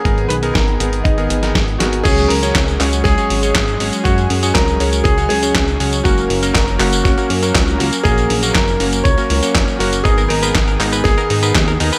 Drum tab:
CC |----------------|x---------------|----------------|----------------|
HH |xxxxxxxxxxxxxxxx|xxoxxxoxxxoxxxox|xxoxxxoxxxoxxxox|xxoxxxoxxxoxxxox|
TB |----------------|xx-xxx-xxx-xxx-x|xx-xxx-xxx-xxx-x|xx-xxx-xxx-xxx-x|
CP |----------------|----x-x-----x---|----x-------x---|----x-x-----x---|
SD |----o------oo-o-|----o---o---o---|----o-------o---|----o---o---o---|
BD |o---o---o---o---|o---o---o---o---|o---o---o---o---|o---o---o---o---|

CC |----------------|----------------|
HH |xxoxxxoxxxoxxxox|xxoxxxoxxxoxxxox|
TB |xx-xxx-xxx-xxx-x|xx-xxx-xxx-xxx-x|
CP |----x-------x---|----x-x-----x---|
SD |----o-------o---|----o---o---o---|
BD |o---o---o---o---|o---o---o---o---|